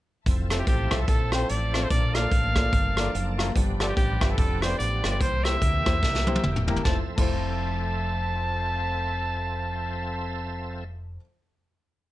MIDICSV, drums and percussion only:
0, 0, Header, 1, 2, 480
1, 0, Start_track
1, 0, Key_signature, -1, "major"
1, 0, Tempo, 410959
1, 307, Time_signature, 4, 2, 24, 8
1, 14151, End_track
2, 0, Start_track
2, 0, Title_t, "Drums"
2, 306, Note_on_c, 9, 36, 81
2, 309, Note_on_c, 9, 42, 78
2, 423, Note_off_c, 9, 36, 0
2, 426, Note_off_c, 9, 42, 0
2, 585, Note_on_c, 9, 42, 60
2, 589, Note_on_c, 9, 37, 84
2, 702, Note_off_c, 9, 42, 0
2, 706, Note_off_c, 9, 37, 0
2, 780, Note_on_c, 9, 42, 73
2, 783, Note_on_c, 9, 36, 77
2, 896, Note_off_c, 9, 42, 0
2, 900, Note_off_c, 9, 36, 0
2, 1061, Note_on_c, 9, 42, 62
2, 1063, Note_on_c, 9, 37, 94
2, 1067, Note_on_c, 9, 36, 84
2, 1178, Note_off_c, 9, 42, 0
2, 1180, Note_off_c, 9, 37, 0
2, 1184, Note_off_c, 9, 36, 0
2, 1257, Note_on_c, 9, 42, 72
2, 1261, Note_on_c, 9, 36, 94
2, 1374, Note_off_c, 9, 42, 0
2, 1378, Note_off_c, 9, 36, 0
2, 1542, Note_on_c, 9, 37, 96
2, 1549, Note_on_c, 9, 42, 66
2, 1659, Note_off_c, 9, 37, 0
2, 1666, Note_off_c, 9, 42, 0
2, 1745, Note_on_c, 9, 42, 72
2, 1861, Note_off_c, 9, 42, 0
2, 2034, Note_on_c, 9, 37, 85
2, 2040, Note_on_c, 9, 42, 62
2, 2151, Note_off_c, 9, 37, 0
2, 2156, Note_off_c, 9, 42, 0
2, 2223, Note_on_c, 9, 42, 83
2, 2225, Note_on_c, 9, 36, 86
2, 2340, Note_off_c, 9, 42, 0
2, 2341, Note_off_c, 9, 36, 0
2, 2506, Note_on_c, 9, 42, 58
2, 2510, Note_on_c, 9, 37, 87
2, 2623, Note_off_c, 9, 42, 0
2, 2627, Note_off_c, 9, 37, 0
2, 2704, Note_on_c, 9, 36, 83
2, 2706, Note_on_c, 9, 42, 75
2, 2821, Note_off_c, 9, 36, 0
2, 2823, Note_off_c, 9, 42, 0
2, 2984, Note_on_c, 9, 42, 60
2, 2986, Note_on_c, 9, 37, 101
2, 2991, Note_on_c, 9, 36, 85
2, 3101, Note_off_c, 9, 42, 0
2, 3103, Note_off_c, 9, 37, 0
2, 3108, Note_off_c, 9, 36, 0
2, 3186, Note_on_c, 9, 42, 72
2, 3187, Note_on_c, 9, 36, 98
2, 3303, Note_off_c, 9, 42, 0
2, 3304, Note_off_c, 9, 36, 0
2, 3469, Note_on_c, 9, 37, 95
2, 3476, Note_on_c, 9, 42, 66
2, 3586, Note_off_c, 9, 37, 0
2, 3593, Note_off_c, 9, 42, 0
2, 3675, Note_on_c, 9, 42, 74
2, 3792, Note_off_c, 9, 42, 0
2, 3961, Note_on_c, 9, 37, 87
2, 3966, Note_on_c, 9, 42, 61
2, 4078, Note_off_c, 9, 37, 0
2, 4083, Note_off_c, 9, 42, 0
2, 4153, Note_on_c, 9, 36, 80
2, 4158, Note_on_c, 9, 42, 84
2, 4270, Note_off_c, 9, 36, 0
2, 4275, Note_off_c, 9, 42, 0
2, 4437, Note_on_c, 9, 42, 57
2, 4441, Note_on_c, 9, 37, 91
2, 4553, Note_off_c, 9, 42, 0
2, 4558, Note_off_c, 9, 37, 0
2, 4635, Note_on_c, 9, 36, 82
2, 4640, Note_on_c, 9, 42, 74
2, 4752, Note_off_c, 9, 36, 0
2, 4757, Note_off_c, 9, 42, 0
2, 4920, Note_on_c, 9, 42, 61
2, 4921, Note_on_c, 9, 36, 79
2, 4921, Note_on_c, 9, 37, 102
2, 5036, Note_off_c, 9, 42, 0
2, 5037, Note_off_c, 9, 36, 0
2, 5038, Note_off_c, 9, 37, 0
2, 5115, Note_on_c, 9, 36, 102
2, 5115, Note_on_c, 9, 42, 73
2, 5232, Note_off_c, 9, 36, 0
2, 5232, Note_off_c, 9, 42, 0
2, 5399, Note_on_c, 9, 37, 91
2, 5407, Note_on_c, 9, 42, 69
2, 5516, Note_off_c, 9, 37, 0
2, 5523, Note_off_c, 9, 42, 0
2, 5604, Note_on_c, 9, 42, 72
2, 5721, Note_off_c, 9, 42, 0
2, 5886, Note_on_c, 9, 37, 88
2, 5891, Note_on_c, 9, 42, 64
2, 6003, Note_off_c, 9, 37, 0
2, 6008, Note_off_c, 9, 42, 0
2, 6080, Note_on_c, 9, 36, 82
2, 6082, Note_on_c, 9, 42, 81
2, 6197, Note_off_c, 9, 36, 0
2, 6198, Note_off_c, 9, 42, 0
2, 6362, Note_on_c, 9, 42, 61
2, 6367, Note_on_c, 9, 37, 85
2, 6479, Note_off_c, 9, 42, 0
2, 6483, Note_off_c, 9, 37, 0
2, 6560, Note_on_c, 9, 42, 75
2, 6561, Note_on_c, 9, 36, 82
2, 6677, Note_off_c, 9, 36, 0
2, 6677, Note_off_c, 9, 42, 0
2, 6847, Note_on_c, 9, 36, 86
2, 6847, Note_on_c, 9, 42, 59
2, 6849, Note_on_c, 9, 37, 104
2, 6963, Note_off_c, 9, 42, 0
2, 6964, Note_off_c, 9, 36, 0
2, 6965, Note_off_c, 9, 37, 0
2, 7040, Note_on_c, 9, 36, 96
2, 7046, Note_on_c, 9, 38, 51
2, 7157, Note_off_c, 9, 36, 0
2, 7163, Note_off_c, 9, 38, 0
2, 7182, Note_on_c, 9, 38, 47
2, 7299, Note_off_c, 9, 38, 0
2, 7321, Note_on_c, 9, 48, 53
2, 7422, Note_off_c, 9, 48, 0
2, 7422, Note_on_c, 9, 48, 55
2, 7517, Note_on_c, 9, 47, 72
2, 7539, Note_off_c, 9, 48, 0
2, 7634, Note_off_c, 9, 47, 0
2, 7663, Note_on_c, 9, 45, 63
2, 7780, Note_off_c, 9, 45, 0
2, 7798, Note_on_c, 9, 43, 85
2, 7900, Note_off_c, 9, 43, 0
2, 7900, Note_on_c, 9, 43, 69
2, 8002, Note_on_c, 9, 38, 72
2, 8004, Note_on_c, 9, 36, 92
2, 8016, Note_off_c, 9, 43, 0
2, 8119, Note_off_c, 9, 38, 0
2, 8121, Note_off_c, 9, 36, 0
2, 8384, Note_on_c, 9, 36, 91
2, 8385, Note_on_c, 9, 49, 76
2, 8501, Note_off_c, 9, 36, 0
2, 8502, Note_off_c, 9, 49, 0
2, 14151, End_track
0, 0, End_of_file